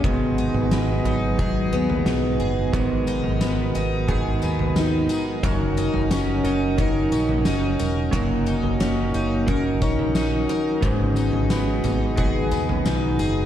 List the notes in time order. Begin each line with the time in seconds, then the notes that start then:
Already playing: D#3 C#4 D#4 A#4
0.04 G#2 D#3 F#3 B3 D#4 F#4 G#4 D#5, kick, floor tom
0.38 D#4
0.54 G#1, floor tom
0.71 B3, snare
1.04 G#1 F#3 B3 D#4, floor tom
1.37 G#2 D#3 F#3 B3 G#4, kick, floor tom
1.41 D#4
1.72 D#2 B3
1.90 A#3, floor tom
2.06 B1 B3 D#4, snare
2.40 F#1 G#4
2.72 G#2 D#3 F#3 B3 A#4, kick, floor tom, tambourine
2.77 D#4
3.07 D#4, tambourine
3.24 G#1, floor tom
3.41 B3, snare, tambourine
3.75 G#1 D#4, tambourine
4.08 G#2 D#3 F#3 B3 G#4, kick, floor tom
4.12 D#4
4.42 D#2 B3, tambourine
4.59 floor tom
4.76 D#4, snare, tambourine
5.09 G#4, tambourine
5.43 F#1 F#3 C#4 D#4 F#4 A#4, kick, floor tom, tambourine
5.77 D#4, tambourine
5.94 F#1, floor tom
6.11 C#4, snare, tambourine
6.44 F#1 C#4 D#4 A#4, tambourine
6.78 F#3 C#4 D#4 A#4, kick, floor tom
6.82 A#4
7.12 A#1 C#4, tambourine
7.29 floor tom
7.45 F#1 C#4 D#4, snare, tambourine
7.79 E1 A#4, tambourine
8.11 F#1 F#3 C#4 D#4, kick, floor tom, tambourine
8.16 A#3 A#4
8.46 D#4, tambourine
8.63 F#1, floor tom
8.80 A#3 C#4, snare, tambourine
9.14 F#1 D#4, tambourine
9.47 F#3 C#4 D#4 A#4, kick, floor tom
9.51 A#4
9.82 A#1 C#4 D#4, kick, tambourine
9.99 floor tom
10.15 D#4, snare, tambourine
10.49 A#4, tambourine
10.81 G#1 G#2 D#3 F#3 B3 C#4 G#4, kick, floor tom, tambourine
10.86 D#4
11.16 D#4, tambourine
11.33 G#1, floor tom
11.50 B3, snare, tambourine
11.84 G#1 B3 D#4, floor tom, tambourine
12.16 G#2 D#3 F#3 B3 G#4, kick, floor tom
12.20 D#4
12.51 D#2 B3, tambourine
12.69 C#4, floor tom
12.85 B1 D#4, snare, tambourine
13.19 F#1 G#4, tambourine